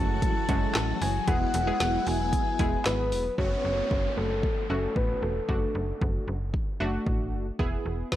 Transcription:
Already playing: F#1 E3 F#3 G#3 A3 C#4 F#4 A5
0.22 kick, closed hi-hat
0.49 F#1 G#3 A3 C#4 F#4, kick, closed hi-hat
0.75 A1, snare, clap, closed hi-hat
1.01 F#1 G#5, open hi-hat
1.27 E1 G#3 B3 E4 G#4 F#5, kick, closed hi-hat
1.54 E1, closed hi-hat
1.67 G#3 B3 E4 G#4
1.80 E1, snare, closed hi-hat
2.06 E1 G#5, open hi-hat
2.33 kick, closed hi-hat
2.59 E1 G#3 B3 E4 G#4, kick, closed hi-hat
2.86 G#1 B4, snare, clap, closed hi-hat
3.12 E1, open hi-hat
3.38 F#1 A3 C#4 F#4 C#5, kick, downlifter
3.64 F#1
3.91 F#1, kick
4.17 F#1 A4
4.43 kick
4.70 F#1 A3 C#4 F#4 A4
4.96 A1 B4, kick
5.22 E1 A4
5.49 F#1 A3 D4 F#4, kick
5.75 F#1
6.01 F#1, kick
6.28 F#1
6.54 kick
6.80 F#1 A3 D4 F#4
7.06 A1, kick
7.33 F#1
7.59 E1 B3 E4 G#4, kick
7.86 E1
8.12 E1 B4, kick, snare

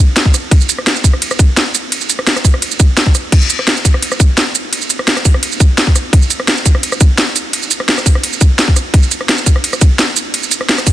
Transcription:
0.16 snare, closed hi-hat, ride
0.25 kick
0.34 cross-stick, closed hi-hat, ride, shaker
0.51 kick, closed hi-hat, ride
0.61 shaker
0.69 closed hi-hat, ride, shaker
0.78 cross-stick
0.87 snare, closed hi-hat, ride
0.96 shaker
1.04 kick, closed hi-hat, ride, shaker
1.13 cross-stick
1.22 closed hi-hat, ride
1.31 cross-stick, shaker
1.39 kick, closed hi-hat, ride, shaker
1.57 snare, closed hi-hat, ride
1.75 closed hi-hat, ride, shaker
1.92 closed hi-hat, ride
2.01 shaker
2.10 closed hi-hat, ride, shaker
2.19 cross-stick
2.27 snare, closed hi-hat, ride
2.36 cross-stick, shaker
2.45 kick, open hi-hat, ride, shaker
2.54 cross-stick
2.62 closed hi-hat, ride
2.71 shaker
2.80 kick, closed hi-hat, ride, shaker
2.97 snare, closed hi-hat, ride
3.06 kick
3.15 cross-stick, closed hi-hat, ride, shaker
3.32 kick, closed hi-hat, crash, ride
3.42 shaker
3.50 closed hi-hat, ride, shaker
3.59 cross-stick
3.67 snare, closed hi-hat, ride
3.77 shaker
3.85 kick, closed hi-hat, ride, shaker
3.94 cross-stick
4.02 closed hi-hat, ride
4.12 cross-stick, shaker
4.20 kick, closed hi-hat, ride, shaker
4.38 snare, closed hi-hat, ride
4.55 closed hi-hat, ride, shaker
4.73 closed hi-hat, ride
4.82 shaker
4.90 closed hi-hat, ride, shaker
4.99 cross-stick
5.08 snare, closed hi-hat, ride
5.17 cross-stick, shaker
5.25 kick, open hi-hat, ride, shaker
5.34 cross-stick
5.43 closed hi-hat, ride
5.52 shaker
5.60 kick, closed hi-hat, ride, shaker
5.78 snare, closed hi-hat, ride
5.87 kick
5.96 cross-stick, closed hi-hat, ride, shaker
6.13 kick, closed hi-hat, ride
6.22 shaker
6.30 closed hi-hat, ride, shaker
6.40 cross-stick
6.48 snare, closed hi-hat, ride
6.57 shaker
6.66 kick, closed hi-hat, ride, shaker
6.75 cross-stick
6.83 closed hi-hat, ride
6.92 cross-stick, shaker
7.01 kick, closed hi-hat, ride, shaker
7.18 snare, closed hi-hat, ride
7.36 closed hi-hat, ride, shaker
7.53 closed hi-hat, ride
7.63 shaker
7.71 closed hi-hat, ride, shaker
7.80 cross-stick
7.89 snare, closed hi-hat, ride
7.98 cross-stick, shaker
8.06 kick, open hi-hat, ride, shaker
8.15 cross-stick
8.24 closed hi-hat, ride
8.33 shaker
8.41 kick, closed hi-hat, ride, shaker
8.59 snare, closed hi-hat, ride
8.68 kick
8.76 cross-stick, closed hi-hat, ride, shaker
8.94 kick, closed hi-hat, ride
9.03 shaker
9.11 closed hi-hat, ride, shaker
9.21 cross-stick
9.29 snare, closed hi-hat, ride
9.38 shaker
9.46 kick, closed hi-hat, ride, shaker
9.56 cross-stick
9.64 closed hi-hat, ride
9.73 cross-stick, shaker
9.81 kick, closed hi-hat, ride, shaker
9.99 snare, closed hi-hat, ride
10.16 closed hi-hat, ride, shaker
10.34 closed hi-hat, ride
10.43 shaker
10.51 closed hi-hat, ride, shaker
10.61 cross-stick
10.69 snare, closed hi-hat, ride
10.78 cross-stick, shaker
10.87 kick, open hi-hat, ride, shaker

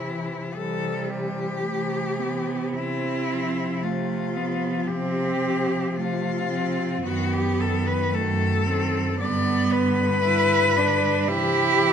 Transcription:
Already playing: C3 E4
0.01 E3
0.54 C3 E3 G3 A4
1.09 E3 G4
1.63 C3 A3
2.19 E3 B3
2.74 C3 C4 E4
3.30 F3
3.82 C3 A3 F4
4.36 F3 B3
4.87 C3 C4 G4
5.42 F3
5.96 C3 A3 F4
6.50 F3 C4
7.04 F#2 D#3 B3 F#4
7.33 G4
7.58 D#3 A4
7.87 B4
8.12 F#2 A3 A4
8.64 D#3 C4
9.18 G2 D3 B3 D5
9.70 D3 B4
10.23 G2 E4
10.76 D3 D4
11.27 C3 E3 E4 G4
11.80 E3

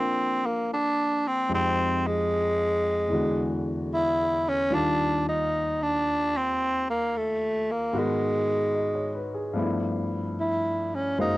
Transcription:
Already playing: A#2 F3 A#3 C4 D4 F4 A4 A#4
0.46 A#3
0.73 D4
1.27 C4
1.49 F2 F3 G#3 D#4 G4
1.55 C4
2.07 G#3
3.08 E2 E3 G#3
3.12 D3 F#4
3.93 E4
4.48 C#4
4.70 D#2 D#3 G3 F4 D5
4.74 D4
5.28 D#4
5.82 D4
6.37 C4
6.90 A#3
7.17 A3
7.71 A#3
7.93 G#2 D#3 B3 F#4 A#4
7.99 G#3
8.75 D#5
8.95 C#5
9.14 B4
9.34 G#4
9.53 G2 F3 A3 B3
9.58 E4
10.40 E4
10.95 C#4
11.18 F#2 F#3 G#3 A#3 D#4 C5 F5

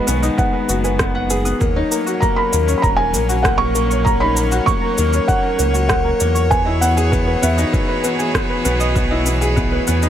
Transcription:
Already playing: D#3 G#3 B3 F#4 G#4 B4 D#5 G#5
0.07 B1 B3 B4, shaker
0.23 D#4 D#6, shaker
0.38 B3 B4 F#5, kick, shaker
0.53 B4 B5
0.69 F#1 F#4 B4, shaker
0.84 B4 G#5, shaker
0.99 B3 B4, kick, cross-stick, shaker
1.15 F#5 B5
1.30 G#4 B4, shaker
1.45 B3 D#6, shaker
1.60 D#2 F#3 A#3 C#4 A#4 C#5, kick, shaker
1.76 D#4 C#5
1.91 A#3 A#5, shaker
2.06 F#4 F#5, shaker
2.20 A#3 A#4 A#5, kick, shaker
2.36 A#4 A#5 B5
2.52 D#2 A#3 A#4, shaker
2.67 C#4 C#6, shaker
2.78 B5
2.82 D#1 A#3 A#4 A#5, kick, shaker
2.96 A#4 G#5 A#5
3.14 A#1 A#3 A#4, shaker
3.29 F#4 F#5, shaker
3.43 A#3 A#4 F#5, kick, cross-stick, shaker
3.58 A#4 A#5 C#6
3.75 A#3 A#4, shaker
3.90 C#5 C#6, shaker
4.05 A#3 A#4 A#5, kick, shaker
4.20 D#4 C#5 B5
4.36 A#3 A#5, shaker
4.51 F#4 F#5, shaker
4.66 A#3 A#4 C#6, kick, shaker
4.81 A#4 A#5
4.96 D#2 A#3 A#4, shaker
5.12 C#4 C#6, shaker
5.27 A#3 A#4 F#5, kick, shaker
5.43 A#4 A#5
5.58 C#2 A#3 A#4, shaker
5.73 F#4 F#5, shaker
5.89 A#3 A#4 F#5, kick, cross-stick, shaker
6.04 A#4 A#5
6.20 E2 A#3 A#4, shaker
6.35 C#5 C#6, shaker
6.50 E3 B3 F#4 G#4 B4 G#5, kick, shaker
6.65 E4 D#5
6.80 B3 F#5 B5, shaker
6.97 G#4 G#5, shaker
7.12 B3 B4, kick, shaker
7.27 B4 B5
7.42 E2 B3 B4 E5, shaker
7.57 D#4 D#6, shaker
7.73 B3 B4, kick, shaker
7.88 B4 B5
8.03 B3 B4, shaker
8.19 G#4 G#5, shaker
8.34 B3 B4, kick, cross-stick, shaker
8.50 B4 B5
8.64 B1 B3 B4, shaker
8.80 D#5 D#6, shaker
8.95 B3 B4, kick, shaker
9.11 E4 D#5
9.26 B3 B5, shaker
9.41 G#4 G#5, shaker
9.56 B3 B4, kick, shaker
9.72 B4 B5
9.87 E2 B3 B4, shaker
10.03 D#4 D#6, shaker

